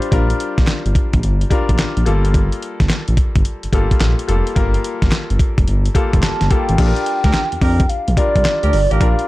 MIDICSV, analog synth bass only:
0, 0, Header, 1, 2, 480
1, 0, Start_track
1, 0, Tempo, 555556
1, 102, Time_signature, 4, 2, 24, 8
1, 8016, End_track
2, 0, Start_track
2, 0, Title_t, "Analog synth bass"
2, 0, Program_c, 0, 38
2, 104, Note_on_c, 0, 34, 104
2, 286, Note_off_c, 0, 34, 0
2, 502, Note_on_c, 0, 34, 93
2, 564, Note_off_c, 0, 34, 0
2, 742, Note_on_c, 0, 31, 88
2, 804, Note_off_c, 0, 31, 0
2, 984, Note_on_c, 0, 34, 93
2, 1045, Note_off_c, 0, 34, 0
2, 1066, Note_on_c, 0, 31, 102
2, 1246, Note_off_c, 0, 31, 0
2, 1463, Note_on_c, 0, 34, 81
2, 1524, Note_off_c, 0, 34, 0
2, 1546, Note_on_c, 0, 34, 48
2, 1608, Note_off_c, 0, 34, 0
2, 1704, Note_on_c, 0, 34, 84
2, 1765, Note_off_c, 0, 34, 0
2, 1785, Note_on_c, 0, 31, 101
2, 2148, Note_off_c, 0, 31, 0
2, 2420, Note_on_c, 0, 31, 84
2, 2483, Note_off_c, 0, 31, 0
2, 2665, Note_on_c, 0, 34, 90
2, 2726, Note_off_c, 0, 34, 0
2, 2900, Note_on_c, 0, 31, 88
2, 2962, Note_off_c, 0, 31, 0
2, 3144, Note_on_c, 0, 31, 45
2, 3176, Note_off_c, 0, 31, 0
2, 3221, Note_on_c, 0, 31, 99
2, 3341, Note_off_c, 0, 31, 0
2, 3466, Note_on_c, 0, 34, 84
2, 3584, Note_off_c, 0, 34, 0
2, 3707, Note_on_c, 0, 29, 91
2, 3824, Note_off_c, 0, 29, 0
2, 3945, Note_on_c, 0, 31, 107
2, 4126, Note_off_c, 0, 31, 0
2, 4340, Note_on_c, 0, 31, 91
2, 4402, Note_off_c, 0, 31, 0
2, 4584, Note_on_c, 0, 31, 92
2, 4645, Note_off_c, 0, 31, 0
2, 4822, Note_on_c, 0, 29, 92
2, 4884, Note_off_c, 0, 29, 0
2, 4906, Note_on_c, 0, 31, 101
2, 5087, Note_off_c, 0, 31, 0
2, 5303, Note_on_c, 0, 29, 90
2, 5364, Note_off_c, 0, 29, 0
2, 5386, Note_on_c, 0, 31, 47
2, 5448, Note_off_c, 0, 31, 0
2, 5544, Note_on_c, 0, 31, 80
2, 5605, Note_off_c, 0, 31, 0
2, 5784, Note_on_c, 0, 33, 86
2, 5845, Note_off_c, 0, 33, 0
2, 5864, Note_on_c, 0, 34, 102
2, 5982, Note_off_c, 0, 34, 0
2, 6258, Note_on_c, 0, 38, 89
2, 6322, Note_off_c, 0, 38, 0
2, 6504, Note_on_c, 0, 41, 48
2, 6536, Note_off_c, 0, 41, 0
2, 6582, Note_on_c, 0, 41, 95
2, 6764, Note_off_c, 0, 41, 0
2, 6982, Note_on_c, 0, 34, 94
2, 7044, Note_off_c, 0, 34, 0
2, 7222, Note_on_c, 0, 36, 93
2, 7284, Note_off_c, 0, 36, 0
2, 7461, Note_on_c, 0, 38, 80
2, 7523, Note_off_c, 0, 38, 0
2, 7546, Note_on_c, 0, 31, 96
2, 7663, Note_off_c, 0, 31, 0
2, 7701, Note_on_c, 0, 33, 90
2, 7763, Note_off_c, 0, 33, 0
2, 7785, Note_on_c, 0, 34, 96
2, 7903, Note_off_c, 0, 34, 0
2, 8016, End_track
0, 0, End_of_file